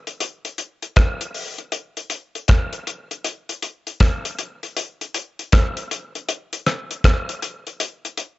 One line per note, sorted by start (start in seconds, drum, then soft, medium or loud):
0.07 closed hi-hat soft
0.20 closed hi-hat medium
0.45 closed hi-hat medium
0.58 closed hi-hat medium
0.82 closed hi-hat soft
0.96 kick medium
0.96 cross-stick loud
0.96 closed hi-hat medium
1.21 closed hi-hat medium
1.34 open hi-hat medium
1.58 closed hi-hat soft
1.72 closed hi-hat medium
1.97 closed hi-hat medium
2.10 closed hi-hat medium
2.35 closed hi-hat soft
2.48 kick loud
2.48 cross-stick loud
2.48 closed hi-hat medium
2.73 closed hi-hat soft
2.87 closed hi-hat medium
3.11 closed hi-hat soft
3.25 closed hi-hat medium
3.49 closed hi-hat medium
3.62 closed hi-hat medium
3.87 closed hi-hat soft
4.00 kick loud
4.00 cross-stick loud
4.00 closed hi-hat medium
4.25 closed hi-hat medium
4.39 closed hi-hat medium
4.63 closed hi-hat soft
4.77 closed hi-hat medium
5.01 closed hi-hat medium
5.14 closed hi-hat medium
5.39 closed hi-hat soft
5.52 kick loud
5.52 cross-stick loud
5.52 closed hi-hat loud
5.77 closed hi-hat soft
5.91 closed hi-hat medium
6.15 closed hi-hat soft
6.29 closed hi-hat medium
6.53 closed hi-hat medium
6.66 cross-stick medium
6.66 closed hi-hat medium
6.91 closed hi-hat soft
7.04 kick medium
7.04 cross-stick loud
7.04 closed hi-hat medium
7.29 closed hi-hat medium
7.42 closed hi-hat medium
7.67 closed hi-hat soft
7.80 closed hi-hat medium
8.05 closed hi-hat soft
8.18 closed hi-hat medium